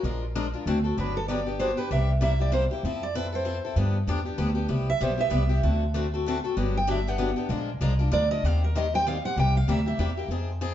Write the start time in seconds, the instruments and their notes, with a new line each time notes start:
Already playing: steel-string acoustic guitar A#4
0.03 upright bass A#1, steel-string acoustic guitar F3 G#3 D4 F4 A#4
0.35 steel-string acoustic guitar F3 G#3 D4 F4 A#4
0.54 steel-string acoustic guitar D4 F4 A#4
0.66 upright bass D2, steel-string acoustic guitar D3 A3 C4 F#4 A4
0.84 steel-string acoustic guitar C4 F#4 A4
0.97 upright bass G1, steel-string acoustic guitar D3 F#3 B3 D4 G4 B4
1.17 steel-string acoustic guitar A4
1.28 steel-string acoustic guitar D3 F#3 B3 D4 G4 D5
1.46 steel-string acoustic guitar B3 D4 G4
1.59 steel-string acoustic guitar D3 F#3 B3 D4 G4 C5
1.77 steel-string acoustic guitar B3 D4 G4 B4
1.91 upright bass C2, steel-string acoustic guitar C3 G3 A#3 E4 G4 E5
2.21 steel-string acoustic guitar C3 G3 A#3 E4 G4 E5
2.40 steel-string acoustic guitar A#3 E4 G4 D5
2.52 steel-string acoustic guitar C3 G3 A#3 E4 G4 C5
2.71 steel-string acoustic guitar A#3 E4 G4
2.83 upright bass F2, steel-string acoustic guitar F3 C4 E4 A4
3.03 steel-string acoustic guitar D5
3.15 steel-string acoustic guitar F3 C4 E4 A4 B4
3.32 steel-string acoustic guitar C4 E4 A4 C5
3.45 steel-string acoustic guitar F3 C4 E4 A4
3.65 steel-string acoustic guitar C4 E4 A4
3.76 upright bass G2, steel-string acoustic guitar D3 F3 B3 D4 G4
4.07 upright bass E2, steel-string acoustic guitar D3 F3 B3 D4 G4
4.25 steel-string acoustic guitar B3 D4 G4
4.38 upright bass D2, steel-string acoustic guitar D3 F3 B3 D4 G4
4.55 steel-string acoustic guitar B3 D4 G4
4.68 upright bass C2, steel-string acoustic guitar C3 G3 B3 E4 G4
4.90 steel-string acoustic guitar E5
5.00 upright bass B1, steel-string acoustic guitar C3 G3 B3 E4 G4 C5
5.18 steel-string acoustic guitar B3 E4 G4 E5
5.30 upright bass C2, steel-string acoustic guitar C3 G3 B3 E4 G4
5.49 steel-string acoustic guitar B3 E4 G4
5.63 upright bass D2, steel-string acoustic guitar D3 A3 C4 F#4 A4
5.94 steel-string acoustic guitar D3 A3 C4 F#4 A4
6.14 steel-string acoustic guitar C4 F#4 A4
6.26 steel-string acoustic guitar D3 A3 C4 F#4 A4
6.44 steel-string acoustic guitar C4 F#4 A4
6.57 upright bass G1, steel-string acoustic guitar D3 F#3 B3 D4 G4
6.77 steel-string acoustic guitar G5
6.87 steel-string acoustic guitar D3 F#3 B3 D4 G4 E5
7.07 steel-string acoustic guitar B3 D4 G4 F#5
7.18 steel-string acoustic guitar D3 F#3 B3 D4 G4
7.36 steel-string acoustic guitar B3 D4 G4
7.49 upright bass A#1, steel-string acoustic guitar F3 G#3 D4 F4 A#4
7.80 upright bass C2, steel-string acoustic guitar F3 G#3 D4 F4 A#4
7.99 steel-string acoustic guitar D4 F4 A#4
8.11 upright bass D2, steel-string acoustic guitar F3 G#3 D4 F4 A#4 D5
8.31 steel-string acoustic guitar D4 F4 A#4 D#5
8.43 upright bass D#2, steel-string acoustic guitar D#3 G3 C4 G4 C5 F5
8.64 steel-string acoustic guitar A#4
8.75 steel-string acoustic guitar D#3 G3 C4 G4 C5 D#5
8.94 steel-string acoustic guitar C4 G4 C5 G5
9.07 steel-string acoustic guitar D#3 G3 C4 G4 C5 F5
9.25 steel-string acoustic guitar C4 G4 C5 F#5
9.36 upright bass C2, steel-string acoustic guitar C3 G3 A#3 E4 G4 G5
9.57 steel-string acoustic guitar F5
9.67 upright bass D2, steel-string acoustic guitar C3 G3 A#3 E4 G4 E5
9.86 steel-string acoustic guitar A#3 E4 G4 E5
9.99 upright bass E2, steel-string acoustic guitar C3 G3 A#3 E4 G4
10.17 steel-string acoustic guitar A#3 E4 G4
10.28 upright bass F2, steel-string acoustic guitar F3 C4 D#4 G#4
10.61 steel-string acoustic guitar F3 C4 D#4 G#4